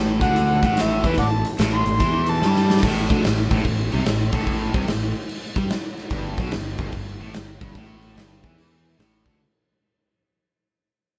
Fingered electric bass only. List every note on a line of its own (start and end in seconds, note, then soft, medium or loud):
0.00 0.17 A1 medium
0.21 0.60 D2 medium
0.63 1.01 A1 medium
1.04 1.17 E2 medium
1.18 1.43 A1 medium
1.59 1.85 A1 medium
1.87 2.00 A1 medium
2.00 2.39 E2 medium
2.42 2.80 G2 medium
2.83 3.08 A1 loud
3.10 3.23 D2 loud
3.25 3.50 A1 medium
3.51 3.64 A1 loud
3.65 3.90 A1 medium
3.94 4.06 C2 loud
4.07 4.32 A1 medium
4.33 4.71 A1 medium
4.74 4.87 C2 loud
4.89 5.14 A1 medium
5.56 5.69 G2 loud
6.11 6.36 G1 loud
6.38 6.51 B1 loud
6.53 6.78 G1 medium
6.79 6.92 G1 medium
6.93 7.19 G1 medium
7.21 7.34 A1 loud
7.35 7.60 G1 medium
7.62 7.75 G1 medium
7.76 8.14 A1 loud
8.16 8.42 G1 loud
8.44 8.95 E2 loud
8.99 9.24 A1 loud
9.26 9.39 D2 medium